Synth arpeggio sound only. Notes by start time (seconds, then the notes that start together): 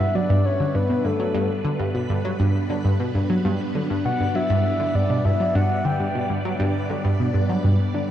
0.15 F#3
0.30 G2
0.60 D3
0.75 G2
0.90 B2
1.05 G2
1.20 F#3
1.34 G2
1.65 D3
1.80 G2
1.95 B2
2.10 G2
2.25 F#3
2.40 G2
2.70 D3
2.85 G2
3.00 B2
3.15 G2
3.30 F#3
3.45 G2
3.75 D3
3.90 G2
4.05 B2
4.20 G2
4.35 F#3
4.50 G2
4.80 D3
4.95 G2
5.10 B2
5.25 G2
5.40 F#3
5.55 G2
5.85 D3
6.00 G2
6.15 B2
6.30 G2
6.45 F#3
6.60 G2
6.90 D3
7.05 G2
7.20 B2
7.34 G2
7.49 F#3
7.64 G2
7.94 D3